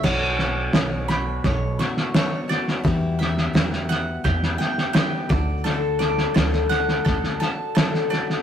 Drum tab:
CC |x---------------|----------------|----------------|
SD |o-o-o-o-o-ooo-oo|o-ooooo-ooooo-o-|o-ooooooooo-oooo|
BD |o-------o-------|o-------o-----o-|--------o-------|